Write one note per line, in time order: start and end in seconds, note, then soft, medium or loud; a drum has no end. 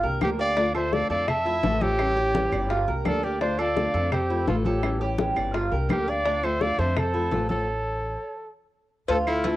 0.03 0.20 C2 medium
0.03 0.21 A#3 soft
0.03 0.21 D4 soft
0.03 0.21 G4 medium
0.03 0.38 A#4 medium
0.03 high bongo soft
0.03 high conga soft
0.21 1.04 D2 loud
0.21 0.38 D3 medium
0.21 0.39 F3 medium
0.21 0.39 A#3 medium
0.21 0.39 D4 medium
0.21 0.37 G4 medium
0.21 0.31 G4 medium
0.21 0.28 A#4 medium
0.21 high bongo soft
0.21 low bongo medium
0.21 high conga medium
0.21 claves medium
0.39 0.57 A#3 soft
0.39 0.57 D4 soft
0.39 0.56 G4 medium
0.39 0.56 D5 medium
0.39 0.73 D5 loud
0.39 0.72 F5 medium
0.39 high conga soft
0.57 0.74 D3 medium
0.57 0.74 A3 medium
0.57 0.74 C4 medium
0.57 0.74 D4 medium
0.57 0.73 F4 medium
0.57 high bongo medium
0.57 high conga soft
0.74 0.92 A3 soft
0.74 0.92 C4 soft
0.74 0.92 F4 medium
0.74 1.09 A4 medium
0.74 0.95 C5 loud
0.74 0.95 E5 medium
0.74 high bongo soft
0.74 high conga soft
0.74 claves medium
0.92 1.27 D3 medium
0.92 1.27 A3 medium
0.92 1.27 C4 medium
0.92 1.28 F4 medium
0.92 1.10 D5 loud
0.92 1.10 F5 loud
0.92 high bongo medium
0.92 high conga medium
1.10 1.60 F2 medium
1.10 1.45 A4 medium
1.10 1.30 D5 loud
1.10 1.30 F5 loud
1.10 high bongo soft
1.10 high conga soft
1.28 1.84 E5 loud
1.28 1.83 A5 loud
1.28 muted nylon-string guitar stroke medium
1.28 high bongo medium
1.28 high conga soft
1.28 low conga medium
1.28 claves medium
1.45 1.63 A3 soft
1.45 1.63 C4 soft
1.45 1.63 E4 medium
1.45 1.62 F4 medium
1.45 high bongo soft
1.45 high conga soft
1.63 2.46 A1 loud
1.63 1.80 C3 medium
1.63 1.80 E3 medium
1.63 1.81 A3 medium
1.63 1.81 C4 medium
1.63 1.80 F4 medium
1.63 1.80 A4 medium
1.63 high bongo soft
1.63 low bongo medium
1.63 high conga medium
1.81 1.99 A3 soft
1.81 1.99 C4 medium
1.81 1.98 F4 medium
1.81 2.88 G4 loud
1.81 2.16 A4 medium
1.81 2.70 C#5 medium
1.81 high conga medium
1.98 2.16 E3 medium
1.98 2.16 G3 medium
1.98 2.16 C#4 medium
1.98 2.15 E4 medium
1.98 high bongo medium
1.98 high conga soft
1.98 claves medium
2.16 2.33 G3 soft
2.16 2.34 C#4 soft
2.16 2.34 E4 soft
2.16 2.51 G4 medium
2.16 high bongo soft
2.16 high conga soft
2.34 2.69 E3 medium
2.34 2.69 G3 medium
2.34 2.69 C#4 medium
2.34 2.70 E4 medium
2.34 high bongo medium
2.34 high conga loud
2.52 2.85 G1 medium
2.52 2.70 D5 medium
2.52 high bongo soft
2.52 high conga soft
2.52 claves medium
2.70 2.87 F4 medium
2.70 muted nylon-string guitar stroke medium
2.70 high bongo medium
2.70 high conga soft
2.87 3.04 C2 medium
2.87 3.06 A#3 soft
2.87 3.05 D4 soft
2.87 3.05 G4 soft
2.87 3.22 A#4 medium
2.87 high bongo soft
2.87 high conga soft
3.05 3.88 D2 loud
3.05 3.23 D3 medium
3.05 3.23 F3 medium
3.05 3.23 A#3 medium
3.05 3.23 D4 medium
3.05 3.22 G4 medium
3.05 3.25 A4 medium
3.05 3.25 D5 medium
3.05 high bongo soft
3.05 low bongo medium
3.05 high conga medium
3.05 claves medium
3.23 3.41 A#3 soft
3.23 3.41 D4 soft
3.23 3.40 G4 medium
3.23 3.41 G4 medium
3.23 3.41 A#4 medium
3.23 3.40 D5 medium
3.23 high conga soft
3.41 3.58 D3 medium
3.41 3.58 A3 medium
3.41 3.58 C4 medium
3.41 3.58 D4 medium
3.41 3.57 F4 medium
3.41 3.60 C5 medium
3.41 3.60 F5 medium
3.41 high bongo medium
3.41 high conga soft
3.59 3.76 A3 soft
3.59 3.76 C4 medium
3.59 3.76 F4 soft
3.59 3.93 A4 medium
3.59 4.12 D5 loud
3.59 4.12 F5 medium
3.59 high bongo soft
3.59 high conga soft
3.59 claves medium
3.76 4.11 D3 medium
3.76 4.11 A3 medium
3.76 4.12 C4 medium
3.76 4.12 F4 medium
3.76 high bongo medium
3.76 high conga medium
3.94 4.44 F2 loud
3.94 4.29 A4 medium
3.94 high bongo soft
3.94 high conga soft
4.12 4.45 G4 medium
4.12 4.45 C5 medium
4.12 muted nylon-string guitar stroke medium
4.12 high bongo medium
4.12 high conga soft
4.12 low conga medium
4.12 claves medium
4.29 4.47 A3 soft
4.29 4.47 C4 soft
4.29 4.47 E4 medium
4.29 4.47 F4 medium
4.29 high bongo soft
4.29 high conga soft
4.47 5.30 A1 medium
4.47 4.64 C3 medium
4.47 4.64 E3 medium
4.47 4.65 A3 medium
4.47 4.65 C4 medium
4.47 4.56 F4 medium
4.47 4.64 F4 medium
4.47 4.64 A4 medium
4.47 4.54 A4 medium
4.47 high bongo soft
4.47 low bongo medium
4.47 high conga medium
4.65 4.82 A3 soft
4.65 4.83 C4 soft
4.65 4.82 F4 medium
4.65 5.15 G4 medium
4.65 5.00 A4 medium
4.65 5.15 C#5 medium
4.65 high conga medium
4.82 5.00 E3 medium
4.82 5.00 G3 medium
4.82 5.00 C#4 medium
4.82 4.99 E4 medium
4.82 high bongo medium
4.82 high conga soft
4.82 claves medium
5.00 5.17 G3 soft
5.00 5.18 C#4 soft
5.00 5.17 E4 medium
5.00 5.35 G4 medium
5.00 high bongo soft
5.00 high conga soft
5.18 5.53 E3 medium
5.18 5.53 G3 medium
5.18 5.54 C#4 medium
5.18 5.54 E4 medium
5.18 high bongo medium
5.18 high conga loud
5.36 5.69 G1 medium
5.36 5.53 D5 medium
5.36 high bongo soft
5.36 high conga soft
5.36 claves medium
5.54 5.71 F4 medium
5.54 muted nylon-string guitar stroke medium
5.54 high bongo medium
5.54 high conga soft
5.72 5.88 C2 medium
5.72 5.89 A#3 soft
5.72 5.89 D4 soft
5.72 5.89 G4 medium
5.72 6.06 A#4 medium
5.72 high bongo soft
5.72 high conga soft
5.89 6.72 D2 loud
5.89 6.06 D3 medium
5.89 6.07 F3 medium
5.89 6.07 A#3 medium
5.89 6.07 D4 medium
5.89 6.06 G4 medium
5.89 6.11 G4 medium
5.89 6.10 A#4 medium
5.89 high bongo soft
5.89 low bongo medium
5.89 high conga loud
5.89 claves medium
6.07 6.24 A#3 soft
6.07 6.25 D4 medium
6.07 6.24 G4 medium
6.07 6.25 D5 medium
6.07 6.46 D5 loud
6.07 6.45 F5 medium
6.07 high conga soft
6.24 6.42 D3 medium
6.24 6.42 A3 medium
6.24 6.42 C4 medium
6.24 6.43 D4 medium
6.24 6.41 F4 medium
6.24 high bongo medium
6.24 high conga soft
6.43 6.60 A3 soft
6.43 6.60 C4 soft
6.43 6.60 F4 medium
6.43 6.77 A4 medium
6.43 6.63 C5 loud
6.43 6.63 E5 medium
6.43 high bongo soft
6.43 high conga soft
6.43 claves medium
6.60 6.95 D3 medium
6.60 6.95 A3 medium
6.60 6.95 C4 medium
6.60 6.95 F4 medium
6.60 6.81 D5 loud
6.60 6.81 F5 loud
6.60 high bongo medium
6.60 high conga medium
6.78 7.28 F2 loud
6.78 7.13 A4 medium
6.78 6.99 C5 loud
6.78 6.99 E5 medium
6.78 high bongo soft
6.78 high conga soft
6.96 7.50 A4 medium
6.96 7.49 C5 medium
6.96 muted nylon-string guitar stroke medium
6.96 high bongo medium
6.96 high conga soft
6.96 low conga medium
6.96 claves medium
7.13 7.32 A3 soft
7.13 7.31 C4 soft
7.13 7.31 E4 medium
7.13 7.31 F4 medium
7.13 high bongo soft
7.13 high conga soft
7.31 8.14 A1 medium
7.31 7.49 C3 medium
7.31 7.49 E3 medium
7.31 7.49 A3 medium
7.31 7.49 C4 medium
7.31 7.48 F4 medium
7.31 7.48 A4 medium
7.31 high bongo soft
7.31 low bongo medium
7.31 high conga medium
7.49 7.67 A3 soft
7.49 7.67 C4 soft
7.49 7.66 F4 medium
7.49 7.66 A4 medium
7.49 8.52 A4 medium
7.49 8.34 C#5 medium
7.49 high conga medium
9.08 9.56 D2 medium
9.08 9.26 D3 medium
9.08 9.26 A3 medium
9.08 9.26 C4 medium
9.08 9.43 F4 medium
9.08 9.25 F4 medium
9.08 9.18 A4 medium
9.08 9.15 C5 loud
9.08 cowbell loud
9.08 high conga soft
9.27 9.43 A3 soft
9.27 9.44 C4 soft
9.27 9.56 E4 medium
9.27 9.44 F4 soft
9.27 9.56 A4 medium
9.27 high conga soft
9.27 claves medium
9.44 9.56 D3 medium
9.44 9.56 A3 medium
9.44 9.56 C4 medium
9.44 9.56 F4 medium
9.44 9.56 A4 medium
9.44 cowbell medium
9.44 high conga medium